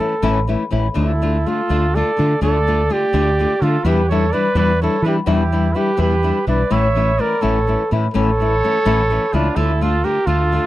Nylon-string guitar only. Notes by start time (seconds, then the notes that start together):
0.00 E3 A3 C#4 E4
0.22 A2 E3 A3 C#4 E4
0.47 E3 A3 C#4 E4
0.71 E3 A3 C#4 E4
0.94 D3 A3 D4 F4
1.22 D3 A3 D4 F4
1.46 D3 A3 D4 F4
1.69 D3 A3 D4 F4
1.95 D3 A3 D4 F4
2.17 D3 A3 D4 F4
2.41 D3 A3 D4 F4
2.67 D3 A3 D4 F4
2.89 D3 A3 D4 F4
3.13 D3 A3 D4 F4
3.39 D3 A3 D4 F4
3.62 D3 A3 D4 F4
3.85 E2 B2 E3 G3 D4 E4
4.11 E3 G3 D4 E4
4.33 E3 G3 D4 E4
4.55 E2 B2 E3 G3 D4 E4
4.82 E3 G3 D4 E4
5.05 E3 G3 D4 E4
5.26 E2 B2 E3 G3 D4 E4
5.52 E3 G3 D4 E4
5.75 E3 G3 D4 E4
5.97 E2 B2 E3 G3 D4 E4
6.23 E3 G3 D4 E4
6.47 E3 G3 D4 E4
6.71 A2 E3 A3 C#4 E4
6.95 E3 A3 C#4 E4
7.18 E3 A3 C#4 E4
7.41 A2 E3 A3 C#4 E4
7.67 E3 A3 C#4 E4
7.91 E3 A3 C#4 E4
8.14 A2 E3 A3 C#4 E4
8.40 E3 A3 C#4 E4
8.63 E3 A3 C#4 E4
8.85 A2 E3 A3 C#4 E4
9.10 E3 A3 C#4 E4
9.33 E3 A3 C#4 E4
9.56 D3 A3 D4 F4
9.81 D3 A3 D4 F4
10.04 D3 A3 D4 F4
10.27 D3 A3 D4 F4
10.52 D3 A3 D4 F4